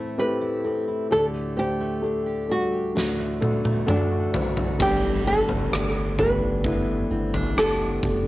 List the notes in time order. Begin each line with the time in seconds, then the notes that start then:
Already playing: A2 E3 A3 C4 E4 A4
0.18 A3 C4 E4 G4 B4
0.41 E4
0.64 A3 C4 E4 A4
0.88 E4
1.10 D2 A2 D3 A3 D4 G4 A4
1.34 A3
1.56 A3 D4 G4 C5
1.80 A3
2.02 A3 D4 G4 A4
2.26 G4
2.48 G3 A3 D4 F#4 A4
2.72 G4
2.95 D2 A2 D3 A3 D4 F#4 A4, snare
3.18 A3
3.41 A3 D4 F#4 A4, high tom
3.65 A3, high tom
3.86 A3 D4 F#4 A4, mid tom
4.11 F#4
4.33 A3 D4 F#4 C5, floor tom
4.57 F#4, floor tom
4.79 G1 G2 D3 G3 A3 B3 D4 G4, kick, floor tom, crash
5.25 A3 B3 D4 G4 A4
5.49 F#1, floor tom
5.71 G1 A3 B3 D4 G4, cross-stick
5.94 G4
6.18 A3 B3 D4 G4 B4, floor tom
6.64 A3 B3 D4 E4, kick
7.11 G1 A3 B3 C4 D4 E4
7.34 D4, floor tom
7.56 F#1 A3 B3 D4 G4 A4, cross-stick
8.03 F#1 A3 B3 D4 G4, kick